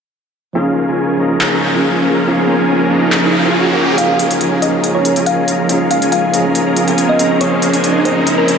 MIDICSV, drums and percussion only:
0, 0, Header, 1, 2, 480
1, 0, Start_track
1, 0, Key_signature, -5, "major"
1, 0, Tempo, 428571
1, 618, Time_signature, 4, 2, 24, 8
1, 9610, End_track
2, 0, Start_track
2, 0, Title_t, "Drums"
2, 1578, Note_on_c, 9, 39, 106
2, 1690, Note_off_c, 9, 39, 0
2, 3497, Note_on_c, 9, 39, 110
2, 3609, Note_off_c, 9, 39, 0
2, 4457, Note_on_c, 9, 42, 77
2, 4569, Note_off_c, 9, 42, 0
2, 4697, Note_on_c, 9, 42, 64
2, 4809, Note_off_c, 9, 42, 0
2, 4823, Note_on_c, 9, 42, 64
2, 4935, Note_off_c, 9, 42, 0
2, 4937, Note_on_c, 9, 42, 77
2, 5049, Note_off_c, 9, 42, 0
2, 5177, Note_on_c, 9, 42, 63
2, 5289, Note_off_c, 9, 42, 0
2, 5417, Note_on_c, 9, 42, 76
2, 5529, Note_off_c, 9, 42, 0
2, 5656, Note_on_c, 9, 42, 65
2, 5768, Note_off_c, 9, 42, 0
2, 5781, Note_on_c, 9, 42, 61
2, 5893, Note_off_c, 9, 42, 0
2, 5896, Note_on_c, 9, 42, 74
2, 6008, Note_off_c, 9, 42, 0
2, 6136, Note_on_c, 9, 42, 66
2, 6248, Note_off_c, 9, 42, 0
2, 6376, Note_on_c, 9, 42, 82
2, 6488, Note_off_c, 9, 42, 0
2, 6616, Note_on_c, 9, 42, 67
2, 6728, Note_off_c, 9, 42, 0
2, 6742, Note_on_c, 9, 42, 63
2, 6854, Note_off_c, 9, 42, 0
2, 6856, Note_on_c, 9, 42, 79
2, 6968, Note_off_c, 9, 42, 0
2, 7096, Note_on_c, 9, 42, 66
2, 7208, Note_off_c, 9, 42, 0
2, 7337, Note_on_c, 9, 42, 79
2, 7449, Note_off_c, 9, 42, 0
2, 7577, Note_on_c, 9, 42, 65
2, 7689, Note_off_c, 9, 42, 0
2, 7701, Note_on_c, 9, 42, 60
2, 7813, Note_off_c, 9, 42, 0
2, 7817, Note_on_c, 9, 42, 77
2, 7929, Note_off_c, 9, 42, 0
2, 8057, Note_on_c, 9, 42, 65
2, 8169, Note_off_c, 9, 42, 0
2, 8297, Note_on_c, 9, 42, 77
2, 8409, Note_off_c, 9, 42, 0
2, 8537, Note_on_c, 9, 42, 65
2, 8649, Note_off_c, 9, 42, 0
2, 8663, Note_on_c, 9, 42, 64
2, 8775, Note_off_c, 9, 42, 0
2, 8779, Note_on_c, 9, 42, 78
2, 8891, Note_off_c, 9, 42, 0
2, 9019, Note_on_c, 9, 42, 64
2, 9131, Note_off_c, 9, 42, 0
2, 9259, Note_on_c, 9, 42, 77
2, 9371, Note_off_c, 9, 42, 0
2, 9500, Note_on_c, 9, 42, 64
2, 9610, Note_off_c, 9, 42, 0
2, 9610, End_track
0, 0, End_of_file